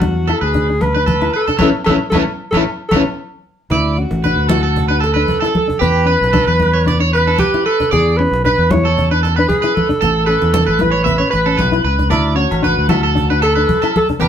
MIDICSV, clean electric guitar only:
0, 0, Header, 1, 3, 480
1, 0, Start_track
1, 0, Tempo, 526316
1, 1460, Time_signature, 4, 2, 24, 8
1, 13026, End_track
2, 0, Start_track
2, 0, Title_t, "Clean electric guitar"
2, 0, Program_c, 0, 27
2, 251, Note_on_c, 0, 69, 73
2, 372, Note_off_c, 0, 69, 0
2, 376, Note_on_c, 0, 71, 60
2, 608, Note_off_c, 0, 71, 0
2, 862, Note_on_c, 0, 71, 59
2, 966, Note_off_c, 0, 71, 0
2, 970, Note_on_c, 0, 69, 71
2, 1203, Note_off_c, 0, 69, 0
2, 1218, Note_on_c, 0, 71, 68
2, 1339, Note_off_c, 0, 71, 0
2, 1344, Note_on_c, 0, 69, 68
2, 1442, Note_off_c, 0, 69, 0
2, 1446, Note_on_c, 0, 73, 91
2, 1454, Note_on_c, 0, 69, 76
2, 1457, Note_on_c, 0, 71, 76
2, 1533, Note_off_c, 0, 73, 0
2, 1537, Note_off_c, 0, 71, 0
2, 1538, Note_off_c, 0, 69, 0
2, 1698, Note_on_c, 0, 73, 78
2, 1700, Note_on_c, 0, 71, 77
2, 1710, Note_on_c, 0, 69, 66
2, 1781, Note_off_c, 0, 71, 0
2, 1782, Note_off_c, 0, 73, 0
2, 1783, Note_off_c, 0, 69, 0
2, 1940, Note_on_c, 0, 71, 77
2, 1948, Note_on_c, 0, 69, 88
2, 1950, Note_on_c, 0, 73, 83
2, 2022, Note_off_c, 0, 71, 0
2, 2026, Note_off_c, 0, 73, 0
2, 2027, Note_off_c, 0, 69, 0
2, 2317, Note_on_c, 0, 73, 81
2, 2318, Note_on_c, 0, 71, 69
2, 2323, Note_on_c, 0, 69, 62
2, 2387, Note_off_c, 0, 69, 0
2, 2387, Note_off_c, 0, 71, 0
2, 2388, Note_off_c, 0, 73, 0
2, 2663, Note_on_c, 0, 73, 85
2, 2669, Note_on_c, 0, 71, 67
2, 2670, Note_on_c, 0, 69, 73
2, 2745, Note_off_c, 0, 69, 0
2, 2746, Note_off_c, 0, 73, 0
2, 2747, Note_off_c, 0, 71, 0
2, 3388, Note_on_c, 0, 74, 88
2, 3615, Note_off_c, 0, 74, 0
2, 3867, Note_on_c, 0, 71, 76
2, 4088, Note_off_c, 0, 71, 0
2, 4092, Note_on_c, 0, 69, 72
2, 4210, Note_off_c, 0, 69, 0
2, 4221, Note_on_c, 0, 69, 72
2, 4451, Note_off_c, 0, 69, 0
2, 4454, Note_on_c, 0, 71, 75
2, 4561, Note_off_c, 0, 71, 0
2, 4564, Note_on_c, 0, 69, 72
2, 4682, Note_off_c, 0, 69, 0
2, 4685, Note_on_c, 0, 71, 67
2, 4926, Note_off_c, 0, 71, 0
2, 4929, Note_on_c, 0, 69, 73
2, 5169, Note_off_c, 0, 69, 0
2, 5283, Note_on_c, 0, 67, 93
2, 5522, Note_off_c, 0, 67, 0
2, 5533, Note_on_c, 0, 71, 74
2, 5767, Note_off_c, 0, 71, 0
2, 5772, Note_on_c, 0, 69, 84
2, 5899, Note_off_c, 0, 69, 0
2, 5906, Note_on_c, 0, 71, 70
2, 6137, Note_off_c, 0, 71, 0
2, 6143, Note_on_c, 0, 73, 65
2, 6255, Note_off_c, 0, 73, 0
2, 6271, Note_on_c, 0, 74, 84
2, 6384, Note_off_c, 0, 74, 0
2, 6387, Note_on_c, 0, 73, 74
2, 6497, Note_off_c, 0, 73, 0
2, 6505, Note_on_c, 0, 71, 74
2, 6626, Note_off_c, 0, 71, 0
2, 6633, Note_on_c, 0, 69, 69
2, 6740, Note_off_c, 0, 69, 0
2, 6742, Note_on_c, 0, 71, 87
2, 6971, Note_off_c, 0, 71, 0
2, 6983, Note_on_c, 0, 71, 75
2, 7212, Note_off_c, 0, 71, 0
2, 7216, Note_on_c, 0, 74, 92
2, 7448, Note_off_c, 0, 74, 0
2, 7716, Note_on_c, 0, 71, 76
2, 7935, Note_off_c, 0, 71, 0
2, 8071, Note_on_c, 0, 69, 67
2, 8298, Note_off_c, 0, 69, 0
2, 8311, Note_on_c, 0, 71, 77
2, 8414, Note_off_c, 0, 71, 0
2, 8417, Note_on_c, 0, 69, 67
2, 8535, Note_off_c, 0, 69, 0
2, 8539, Note_on_c, 0, 71, 63
2, 8762, Note_off_c, 0, 71, 0
2, 8773, Note_on_c, 0, 71, 66
2, 9008, Note_off_c, 0, 71, 0
2, 9127, Note_on_c, 0, 69, 86
2, 9356, Note_off_c, 0, 69, 0
2, 9360, Note_on_c, 0, 71, 74
2, 9597, Note_off_c, 0, 71, 0
2, 9608, Note_on_c, 0, 69, 73
2, 9723, Note_off_c, 0, 69, 0
2, 9726, Note_on_c, 0, 71, 68
2, 9951, Note_off_c, 0, 71, 0
2, 9954, Note_on_c, 0, 73, 66
2, 10066, Note_off_c, 0, 73, 0
2, 10069, Note_on_c, 0, 76, 78
2, 10194, Note_off_c, 0, 76, 0
2, 10198, Note_on_c, 0, 73, 67
2, 10310, Note_off_c, 0, 73, 0
2, 10314, Note_on_c, 0, 71, 75
2, 10445, Note_off_c, 0, 71, 0
2, 10450, Note_on_c, 0, 69, 68
2, 10556, Note_on_c, 0, 71, 83
2, 10563, Note_off_c, 0, 69, 0
2, 10793, Note_off_c, 0, 71, 0
2, 10803, Note_on_c, 0, 71, 68
2, 11036, Note_off_c, 0, 71, 0
2, 11039, Note_on_c, 0, 74, 95
2, 11266, Note_off_c, 0, 74, 0
2, 11270, Note_on_c, 0, 73, 77
2, 11509, Note_off_c, 0, 73, 0
2, 11527, Note_on_c, 0, 71, 81
2, 11755, Note_off_c, 0, 71, 0
2, 11759, Note_on_c, 0, 69, 70
2, 11875, Note_off_c, 0, 69, 0
2, 11885, Note_on_c, 0, 69, 66
2, 12119, Note_off_c, 0, 69, 0
2, 12131, Note_on_c, 0, 71, 68
2, 12236, Note_off_c, 0, 71, 0
2, 12240, Note_on_c, 0, 69, 79
2, 12358, Note_off_c, 0, 69, 0
2, 12361, Note_on_c, 0, 71, 65
2, 12596, Note_off_c, 0, 71, 0
2, 12604, Note_on_c, 0, 69, 71
2, 12837, Note_off_c, 0, 69, 0
2, 12956, Note_on_c, 0, 67, 94
2, 13026, Note_off_c, 0, 67, 0
2, 13026, End_track
3, 0, Start_track
3, 0, Title_t, "Muted clean electric guitar strokes"
3, 7468, Note_on_c, 9, 29, 74
3, 7559, Note_off_c, 9, 29, 0
3, 7939, Note_on_c, 9, 29, 71
3, 8030, Note_off_c, 9, 29, 0
3, 13026, End_track
0, 0, End_of_file